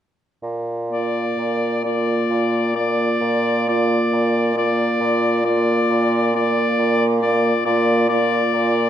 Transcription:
0.43 A#2
0.91 A#3 F4 D5
1.38 A#2
1.85 A#3 F4 D5
2.30 A#2
2.76 A#3 F4 D5
3.21 A#2
3.69 A#3 F4 D5
4.13 A#2
4.56 A#3 F4 D5
5.01 A#2
5.45 A#3 F4 D5
5.90 A#2
6.35 A#3 F4 D5
6.79 A#2
7.22 A#3 F4 D5
7.65 A#2 A#3 F4 D5
8.09 A#3 F4 D5
8.53 A#2

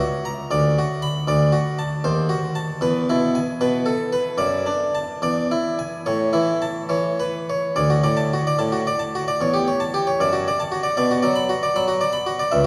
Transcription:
0.00 F#4
0.25 A#5
0.51 D2 D5
0.79 F#4
1.02 B5
1.28 D2 D5
1.52 F#4
1.79 A5
2.04 D#2 C5
2.29 F#4
2.55 A5
2.81 E2 B4
3.10 B2 E4
3.35 G#5
3.61 B2 B4
3.86 A4
4.13 B4
4.38 F#2 D5
4.66 D4
4.95 A5
5.22 E2 D5
5.51 E4
5.79 G#5
6.06 A2 C#5
6.33 E3 E4
6.62 A5
6.89 E3 C#5
7.20 B4
7.50 C#5
7.76 D2 D5
7.90 F#4
8.04 A2 D5
8.17 A5
8.33 F#4
8.47 D5
8.59 A2 A5
8.72 F#4
8.87 D5
8.99 A5
9.15 F#4
9.28 D5
9.41 E2 C#5
9.54 G4
9.68 C#5
9.80 A5
9.94 G4
10.07 C#5
10.20 F#2 D5
10.33 F#4
10.48 D5
10.60 A5
10.72 F#4
10.83 D5
10.97 B2 D5
11.11 F#4
11.23 F#3 D5
11.36 B5
11.49 F#4
11.63 D5
11.76 F#3 B5
11.88 F#4
12.01 D5
12.13 B5
12.26 F#4
12.39 D5
12.52 C#2 E5

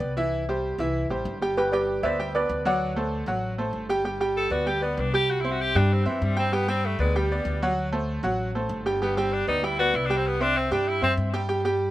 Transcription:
Already playing: B3 B4 D5
0.00 C2
0.17 E3 E4 E5
0.49 G3 G4 C5
0.78 C2 E3 E4 E5
1.10 A1 G3 G4 C5
1.25 G1
1.42 G3 G4 G5
1.57 G3 G4 B4 G5
1.72 G3 G4 B4 D5 G5
2.03 D2 B3 B4 C5 D5 E5
2.19 G3 G4 G5
2.35 B3 B4 D5
2.49 D2
2.65 F#3 F#4 D5 F#5
2.96 A3 A4 C5
3.26 A1 F#3 F#4 F#5
3.58 A3 A4 C5
3.73 G1
3.89 G3 G4 G5
4.05 G3 G4 G5
4.20 G3 G4 G5
4.37 A4
4.50 D2 B3 F#4 B4 D5
4.66 G3 G4 G5
4.81 B3 B4 D5
4.97 C2 D4
5.13 G3 G4 G5
5.30 F#4
5.41 C4 E4 C5 E5
5.51 F#4
5.61 G4
5.75 G2 G3 D4 G4 G5
5.93 C4
6.05 F#2 E3 C4 C5 E5
6.22 G2 G3
6.36 G3 C4 G4 G5
6.52 G3 B3 G4 G5
6.68 G3 C4 G4 G5
6.86 A3
6.99 D2 G#3 B3 B4 D5
7.15 G3 G4 G5
7.31 B3 B4 D5
7.45 D2
7.62 F#3 F#4 F#5
7.92 A3 A4 C5
8.23 A1 F#3 F#4 F#5
8.55 A3 A4 C5
8.69 G1
8.86 G3 G4 G5
9.02 G3 B3 G4 G5
9.17 G3 C4 G4 G5
9.33 D4
9.47 D2 B3 D#4 B4 D5
9.63 G3 E4 G4 G5
9.79 B3 F#4 B4 D5
9.94 C2 E4
10.06 G3 D4 G4
10.11 G5
10.17 C4
10.27 B3
10.40 C4 D4 C5 E5
10.57 C4
10.71 G2 G3 D4 G4 G5
10.88 E4
11.02 F#2 C4 C5 E5
11.17 G2
11.33 G3 G4 G5
11.49 G3 G4 G5
11.65 G3 G4 G5

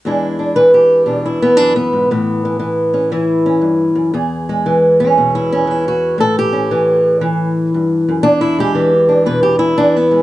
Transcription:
0.05 E2 G#3 D4 E4
0.39 D4
0.56 E3 B4
0.74 G4
1.06 B2 D4
1.26 E4
1.42 B3
1.57 F#2 D4
1.76 B3
1.93 G#2
2.11 A2 E3
2.45 E3
2.59 E3
2.94 C#4
3.12 E3 E4
3.46 C#4
3.62 G2
3.95 F#2
4.14 E2 G#4
4.49 G#3
4.66 E3
5.00 C#4
5.18 B2
5.35 E4
5.52 C#4
5.67 E3 E4
5.88 F#4
6.18 A2 A4
6.39 G4
6.53 C#4
6.71 E3
7.21 E3
7.74 G2
8.09 F#2
8.23 E2 D4
8.41 E4
8.59 G#3 G4
8.75 E3
9.09 D4
9.26 B2 B4
9.43 G4
9.59 E4
9.78 E3 D4
9.96 B3
10.11 G#3

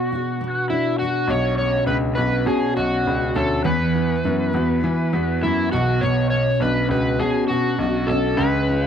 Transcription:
Already playing: B2 B3 D4 F#4
0.12 F#4
0.41 B3
0.70 D4 E4
0.99 F#4
1.28 B1 B2 C#5
1.58 C#4 C#5
1.87 C#2 D4 B4
2.15 B1 F#4 B4
2.46 B2 C#4 G#4
2.77 B1 F#4
3.05 C#2 D4
3.35 D2 C#4 A4
3.64 E2 E3 B4
3.95 E4
4.24 F#2 B3
4.53 E2 F#4
4.83 E3 E4
5.13 E2 F#4
5.42 F#2 B3 E4
5.72 B1 B2 F#4
6.01 B2 C#5
6.30 C#4 C#5
6.60 B1 D4 B4
6.89 C#2 F#4 B4
7.20 B2 C#4 G#4
7.48 B2 F#4
7.79 B1 D4
8.07 B1 C#4 A4
8.37 C#2 C#3 B4
8.69 F4

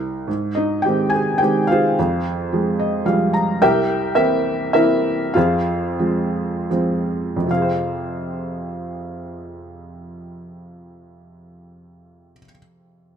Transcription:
Already playing: C2
0.27 G#2
0.55 D#4 D#5
0.82 G4 G5
0.86 D#3 G#3 C4
1.10 G#5
1.14 G#4
1.38 D#3 G#3 C4 G5
1.43 G4
1.67 F5
1.71 F4 G#4 C5
1.99 F2
2.52 F3 G#3
2.79 D#5
3.05 F3 G3 G#3 F5
3.33 A#5
3.62 C2 G4 A#4 E5 G5
4.15 E3 A#3 C4 E4 A#4 E5
4.73 E3 A#3 C4 E4 A#4 E5
5.34 F2 F4 G#4 C5 F5
5.99 F3 G#3 C4
6.70 F3 G#3 C4
7.36 F2
7.42 C3
7.47 F3 F5
7.51 C4
7.56 G#4
7.62 C5

